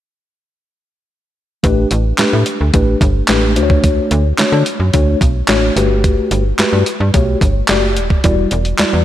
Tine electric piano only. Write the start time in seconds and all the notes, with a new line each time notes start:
1.63 A3 D4 G4 B4
2.18 A3 D4 G4 B4
2.74 A3 D4 G4 B4
3.28 A3 D4 G4 B4
3.56 A3 D4 F#4 C5
3.63 C#5
4.38 A3 D4 F#4 C#5
4.93 A3 D4 F#4 C#5
5.48 A3 D4 F#4 C#5
5.76 A3 F#4 G4 B4
6.59 A3 F#4 G4 B4
7.14 A3 F#4 G4 C#5
7.69 A3 F#4 G4 D5
8.24 G3 E4 F#4 D5
8.79 G3 E4 F#4 D5